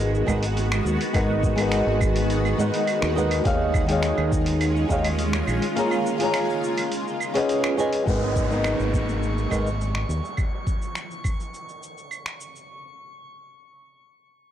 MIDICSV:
0, 0, Header, 1, 7, 480
1, 0, Start_track
1, 0, Tempo, 576923
1, 953, Time_signature, 4, 2, 24, 8
1, 12079, End_track
2, 0, Start_track
2, 0, Title_t, "Synth texture"
2, 0, Program_c, 0, 99
2, 6723, Note_on_c, 0, 85, 82
2, 10568, Note_off_c, 0, 85, 0
2, 12079, End_track
3, 0, Start_track
3, 0, Title_t, "Nylon-string guitar"
3, 0, Program_c, 1, 24
3, 0, Note_on_c, 1, 56, 89
3, 0, Note_on_c, 1, 63, 74
3, 0, Note_on_c, 1, 70, 80
3, 0, Note_on_c, 1, 71, 79
3, 0, Note_on_c, 1, 78, 93
3, 194, Note_off_c, 1, 56, 0
3, 200, Note_off_c, 1, 63, 0
3, 206, Note_off_c, 1, 70, 0
3, 213, Note_off_c, 1, 71, 0
3, 219, Note_off_c, 1, 78, 0
3, 220, Note_on_c, 1, 56, 80
3, 226, Note_on_c, 1, 63, 75
3, 233, Note_on_c, 1, 70, 75
3, 238, Note_on_c, 1, 71, 74
3, 245, Note_on_c, 1, 78, 89
3, 362, Note_off_c, 1, 56, 0
3, 365, Note_off_c, 1, 63, 0
3, 369, Note_off_c, 1, 70, 0
3, 371, Note_off_c, 1, 71, 0
3, 375, Note_off_c, 1, 78, 0
3, 941, Note_on_c, 1, 56, 80
3, 947, Note_on_c, 1, 63, 71
3, 955, Note_on_c, 1, 70, 70
3, 958, Note_on_c, 1, 71, 71
3, 966, Note_on_c, 1, 78, 85
3, 1281, Note_off_c, 1, 56, 0
3, 1284, Note_off_c, 1, 63, 0
3, 1288, Note_off_c, 1, 70, 0
3, 1290, Note_off_c, 1, 71, 0
3, 1293, Note_off_c, 1, 78, 0
3, 1295, Note_on_c, 1, 56, 91
3, 1305, Note_on_c, 1, 63, 89
3, 1318, Note_on_c, 1, 70, 85
3, 1331, Note_on_c, 1, 71, 86
3, 1342, Note_on_c, 1, 78, 100
3, 2120, Note_off_c, 1, 56, 0
3, 2124, Note_off_c, 1, 63, 0
3, 2131, Note_off_c, 1, 70, 0
3, 2137, Note_off_c, 1, 71, 0
3, 2143, Note_off_c, 1, 78, 0
3, 2145, Note_on_c, 1, 56, 75
3, 2151, Note_on_c, 1, 63, 68
3, 2156, Note_on_c, 1, 70, 66
3, 2163, Note_on_c, 1, 71, 68
3, 2170, Note_on_c, 1, 78, 79
3, 2601, Note_off_c, 1, 56, 0
3, 2604, Note_off_c, 1, 63, 0
3, 2607, Note_off_c, 1, 70, 0
3, 2610, Note_off_c, 1, 71, 0
3, 2614, Note_off_c, 1, 78, 0
3, 2623, Note_on_c, 1, 56, 86
3, 2630, Note_on_c, 1, 63, 83
3, 2639, Note_on_c, 1, 70, 82
3, 2644, Note_on_c, 1, 71, 79
3, 2649, Note_on_c, 1, 78, 94
3, 2840, Note_off_c, 1, 56, 0
3, 2844, Note_off_c, 1, 63, 0
3, 2848, Note_off_c, 1, 70, 0
3, 2851, Note_off_c, 1, 71, 0
3, 2853, Note_off_c, 1, 78, 0
3, 2860, Note_on_c, 1, 51, 89
3, 2868, Note_on_c, 1, 63, 80
3, 2874, Note_on_c, 1, 68, 83
3, 2879, Note_on_c, 1, 73, 81
3, 2885, Note_on_c, 1, 77, 102
3, 3200, Note_off_c, 1, 51, 0
3, 3204, Note_off_c, 1, 63, 0
3, 3207, Note_off_c, 1, 68, 0
3, 3210, Note_off_c, 1, 73, 0
3, 3213, Note_off_c, 1, 77, 0
3, 3216, Note_on_c, 1, 51, 93
3, 3229, Note_on_c, 1, 63, 77
3, 3240, Note_on_c, 1, 68, 78
3, 3251, Note_on_c, 1, 73, 81
3, 3265, Note_on_c, 1, 77, 93
3, 4035, Note_off_c, 1, 51, 0
3, 4042, Note_off_c, 1, 63, 0
3, 4047, Note_off_c, 1, 68, 0
3, 4053, Note_off_c, 1, 73, 0
3, 4060, Note_off_c, 1, 77, 0
3, 4065, Note_on_c, 1, 51, 81
3, 4071, Note_on_c, 1, 63, 80
3, 4076, Note_on_c, 1, 68, 76
3, 4084, Note_on_c, 1, 73, 76
3, 4090, Note_on_c, 1, 77, 95
3, 4205, Note_off_c, 1, 51, 0
3, 4208, Note_off_c, 1, 63, 0
3, 4211, Note_off_c, 1, 68, 0
3, 4214, Note_off_c, 1, 73, 0
3, 4218, Note_off_c, 1, 77, 0
3, 4790, Note_on_c, 1, 58, 78
3, 4796, Note_on_c, 1, 65, 77
3, 4803, Note_on_c, 1, 68, 70
3, 4807, Note_on_c, 1, 73, 74
3, 4812, Note_on_c, 1, 82, 91
3, 5125, Note_off_c, 1, 58, 0
3, 5129, Note_off_c, 1, 65, 0
3, 5132, Note_off_c, 1, 68, 0
3, 5133, Note_off_c, 1, 73, 0
3, 5137, Note_off_c, 1, 82, 0
3, 5140, Note_on_c, 1, 58, 92
3, 5154, Note_on_c, 1, 65, 87
3, 5164, Note_on_c, 1, 68, 85
3, 5176, Note_on_c, 1, 73, 84
3, 5191, Note_on_c, 1, 82, 102
3, 5731, Note_off_c, 1, 58, 0
3, 5738, Note_off_c, 1, 65, 0
3, 5743, Note_off_c, 1, 68, 0
3, 5749, Note_off_c, 1, 73, 0
3, 5757, Note_off_c, 1, 82, 0
3, 6105, Note_on_c, 1, 61, 98
3, 6111, Note_on_c, 1, 68, 90
3, 6119, Note_on_c, 1, 71, 89
3, 6125, Note_on_c, 1, 75, 90
3, 6131, Note_on_c, 1, 78, 107
3, 6440, Note_off_c, 1, 61, 0
3, 6443, Note_off_c, 1, 68, 0
3, 6447, Note_off_c, 1, 71, 0
3, 6450, Note_off_c, 1, 75, 0
3, 6453, Note_off_c, 1, 78, 0
3, 6467, Note_on_c, 1, 61, 97
3, 6472, Note_on_c, 1, 68, 81
3, 6480, Note_on_c, 1, 71, 86
3, 6484, Note_on_c, 1, 75, 86
3, 6490, Note_on_c, 1, 80, 99
3, 6682, Note_off_c, 1, 61, 0
3, 6685, Note_off_c, 1, 68, 0
3, 6689, Note_off_c, 1, 71, 0
3, 6691, Note_off_c, 1, 75, 0
3, 6694, Note_off_c, 1, 80, 0
3, 6703, Note_on_c, 1, 56, 85
3, 6709, Note_on_c, 1, 63, 78
3, 6715, Note_on_c, 1, 70, 77
3, 6721, Note_on_c, 1, 71, 77
3, 6728, Note_on_c, 1, 78, 96
3, 7042, Note_off_c, 1, 56, 0
3, 7045, Note_off_c, 1, 63, 0
3, 7048, Note_off_c, 1, 70, 0
3, 7051, Note_off_c, 1, 71, 0
3, 7054, Note_off_c, 1, 78, 0
3, 7054, Note_on_c, 1, 56, 78
3, 7064, Note_on_c, 1, 63, 76
3, 7079, Note_on_c, 1, 70, 74
3, 7092, Note_on_c, 1, 71, 80
3, 7103, Note_on_c, 1, 78, 95
3, 7874, Note_off_c, 1, 56, 0
3, 7879, Note_off_c, 1, 63, 0
3, 7887, Note_off_c, 1, 70, 0
3, 7893, Note_off_c, 1, 71, 0
3, 7899, Note_off_c, 1, 78, 0
3, 7904, Note_on_c, 1, 56, 75
3, 7911, Note_on_c, 1, 63, 67
3, 7917, Note_on_c, 1, 70, 75
3, 7923, Note_on_c, 1, 71, 66
3, 7930, Note_on_c, 1, 78, 84
3, 8044, Note_off_c, 1, 56, 0
3, 8048, Note_off_c, 1, 63, 0
3, 8051, Note_off_c, 1, 70, 0
3, 8054, Note_off_c, 1, 71, 0
3, 8058, Note_off_c, 1, 78, 0
3, 12079, End_track
4, 0, Start_track
4, 0, Title_t, "Ambient pad"
4, 0, Program_c, 2, 92
4, 0, Note_on_c, 2, 51, 82
4, 0, Note_on_c, 2, 56, 75
4, 0, Note_on_c, 2, 59, 77
4, 0, Note_on_c, 2, 66, 88
4, 2836, Note_off_c, 2, 66, 0
4, 2837, Note_off_c, 2, 56, 0
4, 2837, Note_off_c, 2, 59, 0
4, 2869, Note_on_c, 2, 65, 90
4, 2870, Note_on_c, 2, 56, 73
4, 2871, Note_on_c, 2, 61, 78
4, 4758, Note_off_c, 2, 51, 0
4, 4773, Note_off_c, 2, 61, 0
4, 4796, Note_on_c, 2, 49, 84
4, 5723, Note_off_c, 2, 56, 0
4, 5723, Note_off_c, 2, 65, 0
4, 6696, Note_off_c, 2, 49, 0
4, 12079, End_track
5, 0, Start_track
5, 0, Title_t, "Fingered electric bass"
5, 0, Program_c, 3, 33
5, 0, Note_on_c, 3, 32, 95
5, 181, Note_off_c, 3, 32, 0
5, 233, Note_on_c, 3, 32, 94
5, 664, Note_off_c, 3, 32, 0
5, 708, Note_on_c, 3, 39, 88
5, 801, Note_off_c, 3, 39, 0
5, 950, Note_on_c, 3, 32, 96
5, 1503, Note_off_c, 3, 32, 0
5, 1552, Note_on_c, 3, 32, 100
5, 2102, Note_off_c, 3, 32, 0
5, 2152, Note_on_c, 3, 44, 81
5, 2243, Note_off_c, 3, 44, 0
5, 2517, Note_on_c, 3, 39, 104
5, 2824, Note_off_c, 3, 39, 0
5, 2873, Note_on_c, 3, 39, 102
5, 3424, Note_off_c, 3, 39, 0
5, 3477, Note_on_c, 3, 39, 101
5, 4024, Note_off_c, 3, 39, 0
5, 4076, Note_on_c, 3, 39, 97
5, 4505, Note_off_c, 3, 39, 0
5, 4555, Note_on_c, 3, 34, 85
5, 4645, Note_off_c, 3, 34, 0
5, 6714, Note_on_c, 3, 32, 88
5, 7265, Note_off_c, 3, 32, 0
5, 7319, Note_on_c, 3, 32, 86
5, 7865, Note_off_c, 3, 32, 0
5, 7918, Note_on_c, 3, 32, 88
5, 8346, Note_off_c, 3, 32, 0
5, 8394, Note_on_c, 3, 39, 83
5, 8484, Note_off_c, 3, 39, 0
5, 12079, End_track
6, 0, Start_track
6, 0, Title_t, "Downlifter"
6, 0, Program_c, 4, 103
6, 6715, Note_on_c, 4, 60, 70
6, 10554, Note_off_c, 4, 60, 0
6, 12079, End_track
7, 0, Start_track
7, 0, Title_t, "Drums"
7, 121, Note_on_c, 9, 69, 29
7, 204, Note_off_c, 9, 69, 0
7, 230, Note_on_c, 9, 75, 80
7, 231, Note_on_c, 9, 36, 60
7, 237, Note_on_c, 9, 69, 80
7, 313, Note_off_c, 9, 75, 0
7, 315, Note_off_c, 9, 36, 0
7, 321, Note_off_c, 9, 69, 0
7, 355, Note_on_c, 9, 46, 57
7, 362, Note_on_c, 9, 69, 36
7, 438, Note_off_c, 9, 46, 0
7, 445, Note_off_c, 9, 69, 0
7, 474, Note_on_c, 9, 46, 43
7, 481, Note_on_c, 9, 69, 45
7, 557, Note_off_c, 9, 46, 0
7, 564, Note_off_c, 9, 69, 0
7, 597, Note_on_c, 9, 26, 78
7, 597, Note_on_c, 9, 75, 84
7, 604, Note_on_c, 9, 69, 31
7, 680, Note_off_c, 9, 26, 0
7, 680, Note_off_c, 9, 75, 0
7, 687, Note_off_c, 9, 69, 0
7, 717, Note_on_c, 9, 69, 85
7, 800, Note_off_c, 9, 69, 0
7, 838, Note_on_c, 9, 46, 50
7, 846, Note_on_c, 9, 69, 32
7, 922, Note_off_c, 9, 46, 0
7, 929, Note_off_c, 9, 69, 0
7, 952, Note_on_c, 9, 36, 120
7, 952, Note_on_c, 9, 46, 47
7, 952, Note_on_c, 9, 75, 89
7, 959, Note_on_c, 9, 69, 47
7, 1035, Note_off_c, 9, 46, 0
7, 1035, Note_off_c, 9, 75, 0
7, 1036, Note_off_c, 9, 36, 0
7, 1042, Note_off_c, 9, 69, 0
7, 1193, Note_on_c, 9, 36, 103
7, 1194, Note_on_c, 9, 69, 71
7, 1276, Note_off_c, 9, 36, 0
7, 1277, Note_off_c, 9, 69, 0
7, 1312, Note_on_c, 9, 46, 59
7, 1312, Note_on_c, 9, 75, 81
7, 1319, Note_on_c, 9, 69, 31
7, 1396, Note_off_c, 9, 46, 0
7, 1396, Note_off_c, 9, 75, 0
7, 1403, Note_off_c, 9, 69, 0
7, 1428, Note_on_c, 9, 26, 79
7, 1428, Note_on_c, 9, 46, 45
7, 1435, Note_on_c, 9, 69, 41
7, 1511, Note_off_c, 9, 26, 0
7, 1511, Note_off_c, 9, 46, 0
7, 1518, Note_off_c, 9, 69, 0
7, 1669, Note_on_c, 9, 75, 82
7, 1674, Note_on_c, 9, 36, 100
7, 1676, Note_on_c, 9, 69, 80
7, 1752, Note_off_c, 9, 75, 0
7, 1757, Note_off_c, 9, 36, 0
7, 1759, Note_off_c, 9, 69, 0
7, 1794, Note_on_c, 9, 46, 59
7, 1802, Note_on_c, 9, 69, 34
7, 1878, Note_off_c, 9, 46, 0
7, 1885, Note_off_c, 9, 69, 0
7, 1913, Note_on_c, 9, 46, 45
7, 1920, Note_on_c, 9, 69, 42
7, 1996, Note_off_c, 9, 46, 0
7, 2003, Note_off_c, 9, 69, 0
7, 2038, Note_on_c, 9, 75, 75
7, 2045, Note_on_c, 9, 69, 27
7, 2122, Note_off_c, 9, 75, 0
7, 2129, Note_off_c, 9, 69, 0
7, 2158, Note_on_c, 9, 69, 77
7, 2241, Note_off_c, 9, 69, 0
7, 2278, Note_on_c, 9, 46, 59
7, 2285, Note_on_c, 9, 69, 32
7, 2361, Note_off_c, 9, 46, 0
7, 2368, Note_off_c, 9, 69, 0
7, 2392, Note_on_c, 9, 46, 43
7, 2392, Note_on_c, 9, 75, 77
7, 2399, Note_on_c, 9, 69, 42
7, 2475, Note_off_c, 9, 46, 0
7, 2475, Note_off_c, 9, 75, 0
7, 2482, Note_off_c, 9, 69, 0
7, 2515, Note_on_c, 9, 26, 76
7, 2522, Note_on_c, 9, 69, 32
7, 2599, Note_off_c, 9, 26, 0
7, 2606, Note_off_c, 9, 69, 0
7, 2642, Note_on_c, 9, 69, 81
7, 2725, Note_off_c, 9, 69, 0
7, 2755, Note_on_c, 9, 46, 55
7, 2755, Note_on_c, 9, 75, 80
7, 2762, Note_on_c, 9, 69, 32
7, 2838, Note_off_c, 9, 46, 0
7, 2838, Note_off_c, 9, 75, 0
7, 2845, Note_off_c, 9, 69, 0
7, 2873, Note_on_c, 9, 46, 46
7, 2875, Note_on_c, 9, 36, 119
7, 2880, Note_on_c, 9, 69, 45
7, 2956, Note_off_c, 9, 46, 0
7, 2958, Note_off_c, 9, 36, 0
7, 2963, Note_off_c, 9, 69, 0
7, 3111, Note_on_c, 9, 75, 80
7, 3115, Note_on_c, 9, 36, 100
7, 3118, Note_on_c, 9, 69, 75
7, 3194, Note_off_c, 9, 75, 0
7, 3198, Note_off_c, 9, 36, 0
7, 3201, Note_off_c, 9, 69, 0
7, 3234, Note_on_c, 9, 46, 56
7, 3241, Note_on_c, 9, 69, 33
7, 3317, Note_off_c, 9, 46, 0
7, 3324, Note_off_c, 9, 69, 0
7, 3350, Note_on_c, 9, 26, 76
7, 3350, Note_on_c, 9, 46, 47
7, 3357, Note_on_c, 9, 69, 44
7, 3433, Note_off_c, 9, 26, 0
7, 3433, Note_off_c, 9, 46, 0
7, 3440, Note_off_c, 9, 69, 0
7, 3475, Note_on_c, 9, 75, 79
7, 3558, Note_off_c, 9, 75, 0
7, 3596, Note_on_c, 9, 36, 100
7, 3597, Note_on_c, 9, 69, 77
7, 3679, Note_off_c, 9, 36, 0
7, 3680, Note_off_c, 9, 69, 0
7, 3712, Note_on_c, 9, 46, 59
7, 3719, Note_on_c, 9, 69, 32
7, 3795, Note_off_c, 9, 46, 0
7, 3802, Note_off_c, 9, 69, 0
7, 3833, Note_on_c, 9, 46, 47
7, 3833, Note_on_c, 9, 75, 89
7, 3840, Note_on_c, 9, 69, 43
7, 3916, Note_off_c, 9, 46, 0
7, 3916, Note_off_c, 9, 75, 0
7, 3924, Note_off_c, 9, 69, 0
7, 3961, Note_on_c, 9, 69, 27
7, 4045, Note_off_c, 9, 69, 0
7, 4075, Note_on_c, 9, 36, 58
7, 4078, Note_on_c, 9, 69, 75
7, 4158, Note_off_c, 9, 36, 0
7, 4161, Note_off_c, 9, 69, 0
7, 4198, Note_on_c, 9, 46, 58
7, 4198, Note_on_c, 9, 75, 83
7, 4205, Note_on_c, 9, 69, 34
7, 4281, Note_off_c, 9, 46, 0
7, 4281, Note_off_c, 9, 75, 0
7, 4288, Note_off_c, 9, 69, 0
7, 4315, Note_on_c, 9, 46, 48
7, 4322, Note_on_c, 9, 69, 46
7, 4398, Note_off_c, 9, 46, 0
7, 4405, Note_off_c, 9, 69, 0
7, 4437, Note_on_c, 9, 26, 78
7, 4444, Note_on_c, 9, 69, 31
7, 4520, Note_off_c, 9, 26, 0
7, 4527, Note_off_c, 9, 69, 0
7, 4553, Note_on_c, 9, 75, 85
7, 4560, Note_on_c, 9, 69, 83
7, 4636, Note_off_c, 9, 75, 0
7, 4643, Note_off_c, 9, 69, 0
7, 4678, Note_on_c, 9, 46, 55
7, 4685, Note_on_c, 9, 69, 32
7, 4761, Note_off_c, 9, 46, 0
7, 4769, Note_off_c, 9, 69, 0
7, 4797, Note_on_c, 9, 46, 49
7, 4805, Note_on_c, 9, 69, 44
7, 4881, Note_off_c, 9, 46, 0
7, 4888, Note_off_c, 9, 69, 0
7, 4919, Note_on_c, 9, 75, 83
7, 4926, Note_on_c, 9, 69, 32
7, 5002, Note_off_c, 9, 75, 0
7, 5009, Note_off_c, 9, 69, 0
7, 5043, Note_on_c, 9, 69, 71
7, 5126, Note_off_c, 9, 69, 0
7, 5158, Note_on_c, 9, 46, 61
7, 5166, Note_on_c, 9, 69, 32
7, 5242, Note_off_c, 9, 46, 0
7, 5249, Note_off_c, 9, 69, 0
7, 5273, Note_on_c, 9, 26, 81
7, 5273, Note_on_c, 9, 46, 47
7, 5273, Note_on_c, 9, 75, 85
7, 5280, Note_on_c, 9, 69, 45
7, 5356, Note_off_c, 9, 26, 0
7, 5356, Note_off_c, 9, 46, 0
7, 5356, Note_off_c, 9, 75, 0
7, 5363, Note_off_c, 9, 69, 0
7, 5405, Note_on_c, 9, 69, 29
7, 5488, Note_off_c, 9, 69, 0
7, 5522, Note_on_c, 9, 69, 73
7, 5605, Note_off_c, 9, 69, 0
7, 5637, Note_on_c, 9, 46, 58
7, 5637, Note_on_c, 9, 75, 84
7, 5644, Note_on_c, 9, 69, 34
7, 5720, Note_off_c, 9, 46, 0
7, 5720, Note_off_c, 9, 75, 0
7, 5727, Note_off_c, 9, 69, 0
7, 5754, Note_on_c, 9, 46, 48
7, 5761, Note_on_c, 9, 69, 44
7, 5837, Note_off_c, 9, 46, 0
7, 5844, Note_off_c, 9, 69, 0
7, 5887, Note_on_c, 9, 69, 27
7, 5970, Note_off_c, 9, 69, 0
7, 5994, Note_on_c, 9, 75, 83
7, 6001, Note_on_c, 9, 69, 76
7, 6077, Note_off_c, 9, 75, 0
7, 6084, Note_off_c, 9, 69, 0
7, 6119, Note_on_c, 9, 46, 60
7, 6126, Note_on_c, 9, 69, 34
7, 6202, Note_off_c, 9, 46, 0
7, 6209, Note_off_c, 9, 69, 0
7, 6234, Note_on_c, 9, 46, 46
7, 6241, Note_on_c, 9, 69, 45
7, 6317, Note_off_c, 9, 46, 0
7, 6324, Note_off_c, 9, 69, 0
7, 6355, Note_on_c, 9, 26, 84
7, 6355, Note_on_c, 9, 75, 84
7, 6362, Note_on_c, 9, 69, 31
7, 6438, Note_off_c, 9, 26, 0
7, 6438, Note_off_c, 9, 75, 0
7, 6445, Note_off_c, 9, 69, 0
7, 6477, Note_on_c, 9, 69, 80
7, 6560, Note_off_c, 9, 69, 0
7, 6594, Note_on_c, 9, 46, 57
7, 6601, Note_on_c, 9, 69, 31
7, 6677, Note_off_c, 9, 46, 0
7, 6685, Note_off_c, 9, 69, 0
7, 6717, Note_on_c, 9, 36, 118
7, 6718, Note_on_c, 9, 69, 44
7, 6800, Note_off_c, 9, 36, 0
7, 6801, Note_off_c, 9, 69, 0
7, 6957, Note_on_c, 9, 36, 93
7, 6958, Note_on_c, 9, 69, 77
7, 7040, Note_off_c, 9, 36, 0
7, 7041, Note_off_c, 9, 69, 0
7, 7082, Note_on_c, 9, 69, 34
7, 7165, Note_off_c, 9, 69, 0
7, 7191, Note_on_c, 9, 26, 79
7, 7191, Note_on_c, 9, 75, 76
7, 7198, Note_on_c, 9, 69, 43
7, 7275, Note_off_c, 9, 26, 0
7, 7275, Note_off_c, 9, 75, 0
7, 7282, Note_off_c, 9, 69, 0
7, 7319, Note_on_c, 9, 69, 28
7, 7402, Note_off_c, 9, 69, 0
7, 7437, Note_on_c, 9, 36, 102
7, 7437, Note_on_c, 9, 69, 73
7, 7520, Note_off_c, 9, 36, 0
7, 7521, Note_off_c, 9, 69, 0
7, 7561, Note_on_c, 9, 69, 31
7, 7644, Note_off_c, 9, 69, 0
7, 7678, Note_on_c, 9, 69, 41
7, 7761, Note_off_c, 9, 69, 0
7, 7802, Note_on_c, 9, 69, 29
7, 7885, Note_off_c, 9, 69, 0
7, 7914, Note_on_c, 9, 75, 75
7, 7916, Note_on_c, 9, 36, 53
7, 7921, Note_on_c, 9, 69, 70
7, 7998, Note_off_c, 9, 75, 0
7, 8000, Note_off_c, 9, 36, 0
7, 8005, Note_off_c, 9, 69, 0
7, 8042, Note_on_c, 9, 69, 34
7, 8125, Note_off_c, 9, 69, 0
7, 8162, Note_on_c, 9, 69, 42
7, 8245, Note_off_c, 9, 69, 0
7, 8277, Note_on_c, 9, 26, 74
7, 8360, Note_off_c, 9, 26, 0
7, 8401, Note_on_c, 9, 69, 79
7, 8484, Note_off_c, 9, 69, 0
7, 8525, Note_on_c, 9, 69, 29
7, 8608, Note_off_c, 9, 69, 0
7, 8630, Note_on_c, 9, 75, 75
7, 8636, Note_on_c, 9, 36, 114
7, 8637, Note_on_c, 9, 69, 45
7, 8713, Note_off_c, 9, 75, 0
7, 8720, Note_off_c, 9, 36, 0
7, 8720, Note_off_c, 9, 69, 0
7, 8876, Note_on_c, 9, 36, 99
7, 8878, Note_on_c, 9, 69, 71
7, 8960, Note_off_c, 9, 36, 0
7, 8961, Note_off_c, 9, 69, 0
7, 9001, Note_on_c, 9, 69, 32
7, 9084, Note_off_c, 9, 69, 0
7, 9113, Note_on_c, 9, 26, 72
7, 9120, Note_on_c, 9, 69, 41
7, 9197, Note_off_c, 9, 26, 0
7, 9204, Note_off_c, 9, 69, 0
7, 9243, Note_on_c, 9, 69, 29
7, 9326, Note_off_c, 9, 69, 0
7, 9353, Note_on_c, 9, 75, 64
7, 9357, Note_on_c, 9, 36, 98
7, 9360, Note_on_c, 9, 69, 70
7, 9436, Note_off_c, 9, 75, 0
7, 9440, Note_off_c, 9, 36, 0
7, 9443, Note_off_c, 9, 69, 0
7, 9486, Note_on_c, 9, 69, 31
7, 9569, Note_off_c, 9, 69, 0
7, 9601, Note_on_c, 9, 69, 41
7, 9684, Note_off_c, 9, 69, 0
7, 9725, Note_on_c, 9, 69, 28
7, 9808, Note_off_c, 9, 69, 0
7, 9842, Note_on_c, 9, 69, 73
7, 9925, Note_off_c, 9, 69, 0
7, 9965, Note_on_c, 9, 69, 30
7, 10048, Note_off_c, 9, 69, 0
7, 10076, Note_on_c, 9, 75, 68
7, 10083, Note_on_c, 9, 69, 40
7, 10159, Note_off_c, 9, 75, 0
7, 10166, Note_off_c, 9, 69, 0
7, 10200, Note_on_c, 9, 26, 70
7, 10207, Note_on_c, 9, 69, 30
7, 10283, Note_off_c, 9, 26, 0
7, 10290, Note_off_c, 9, 69, 0
7, 10320, Note_on_c, 9, 69, 78
7, 10404, Note_off_c, 9, 69, 0
7, 10448, Note_on_c, 9, 69, 29
7, 10531, Note_off_c, 9, 69, 0
7, 12079, End_track
0, 0, End_of_file